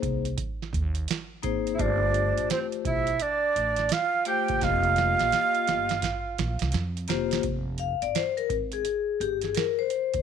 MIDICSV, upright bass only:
0, 0, Header, 1, 2, 480
1, 0, Start_track
1, 0, Tempo, 705882
1, 1218, Time_signature, 4, 2, 24, 8
1, 6950, End_track
2, 0, Start_track
2, 0, Title_t, "Upright bass"
2, 0, Program_c, 0, 32
2, 19, Note_on_c, 0, 36, 93
2, 234, Note_off_c, 0, 36, 0
2, 496, Note_on_c, 0, 39, 91
2, 712, Note_off_c, 0, 39, 0
2, 980, Note_on_c, 0, 32, 89
2, 1195, Note_off_c, 0, 32, 0
2, 1220, Note_on_c, 0, 31, 103
2, 1572, Note_off_c, 0, 31, 0
2, 1613, Note_on_c, 0, 33, 79
2, 1690, Note_off_c, 0, 33, 0
2, 1939, Note_on_c, 0, 35, 96
2, 2154, Note_off_c, 0, 35, 0
2, 2421, Note_on_c, 0, 33, 89
2, 2635, Note_off_c, 0, 33, 0
2, 3058, Note_on_c, 0, 30, 80
2, 3133, Note_off_c, 0, 30, 0
2, 3139, Note_on_c, 0, 29, 97
2, 3492, Note_off_c, 0, 29, 0
2, 3535, Note_on_c, 0, 34, 89
2, 3611, Note_off_c, 0, 34, 0
2, 3862, Note_on_c, 0, 31, 94
2, 4076, Note_off_c, 0, 31, 0
2, 4343, Note_on_c, 0, 34, 93
2, 4478, Note_off_c, 0, 34, 0
2, 4497, Note_on_c, 0, 36, 84
2, 4572, Note_off_c, 0, 36, 0
2, 4582, Note_on_c, 0, 41, 110
2, 4796, Note_off_c, 0, 41, 0
2, 4822, Note_on_c, 0, 29, 89
2, 5036, Note_off_c, 0, 29, 0
2, 5059, Note_on_c, 0, 29, 90
2, 5412, Note_off_c, 0, 29, 0
2, 5455, Note_on_c, 0, 31, 78
2, 5531, Note_off_c, 0, 31, 0
2, 5779, Note_on_c, 0, 32, 86
2, 5994, Note_off_c, 0, 32, 0
2, 6258, Note_on_c, 0, 31, 86
2, 6474, Note_off_c, 0, 31, 0
2, 6898, Note_on_c, 0, 30, 77
2, 6950, Note_off_c, 0, 30, 0
2, 6950, End_track
0, 0, End_of_file